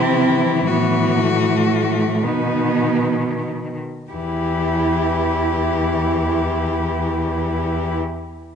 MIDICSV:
0, 0, Header, 1, 5, 480
1, 0, Start_track
1, 0, Key_signature, 1, "minor"
1, 0, Tempo, 988468
1, 334, Time_signature, 6, 3, 24, 8
1, 825, Tempo, 1121495
1, 1305, Tempo, 1293103
1, 1785, Tempo, 1260504
1, 3475, End_track
2, 0, Start_track
2, 0, Title_t, "Cello"
2, 0, Program_c, 0, 42
2, 0, Note_on_c, 0, 64, 52
2, 327, Note_on_c, 0, 66, 45
2, 334, Note_off_c, 0, 64, 0
2, 1063, Note_on_c, 0, 63, 32
2, 1070, Note_off_c, 0, 66, 0
2, 1424, Note_off_c, 0, 63, 0
2, 1784, Note_on_c, 0, 67, 33
2, 3253, Note_off_c, 0, 67, 0
2, 3475, End_track
3, 0, Start_track
3, 0, Title_t, "Cello"
3, 0, Program_c, 1, 42
3, 0, Note_on_c, 1, 60, 58
3, 333, Note_off_c, 1, 60, 0
3, 342, Note_on_c, 1, 59, 41
3, 587, Note_on_c, 1, 57, 50
3, 595, Note_off_c, 1, 59, 0
3, 1057, Note_on_c, 1, 59, 43
3, 1064, Note_off_c, 1, 57, 0
3, 1543, Note_off_c, 1, 59, 0
3, 1789, Note_on_c, 1, 64, 30
3, 3257, Note_off_c, 1, 64, 0
3, 3475, End_track
4, 0, Start_track
4, 0, Title_t, "Cello"
4, 0, Program_c, 2, 42
4, 0, Note_on_c, 2, 52, 39
4, 1041, Note_off_c, 2, 52, 0
4, 1061, Note_on_c, 2, 51, 30
4, 1653, Note_off_c, 2, 51, 0
4, 1792, Note_on_c, 2, 52, 26
4, 3260, Note_off_c, 2, 52, 0
4, 3475, End_track
5, 0, Start_track
5, 0, Title_t, "Cello"
5, 0, Program_c, 3, 42
5, 0, Note_on_c, 3, 48, 39
5, 330, Note_off_c, 3, 48, 0
5, 333, Note_on_c, 3, 45, 38
5, 1055, Note_on_c, 3, 47, 32
5, 1061, Note_off_c, 3, 45, 0
5, 1665, Note_off_c, 3, 47, 0
5, 1788, Note_on_c, 3, 40, 30
5, 3257, Note_off_c, 3, 40, 0
5, 3475, End_track
0, 0, End_of_file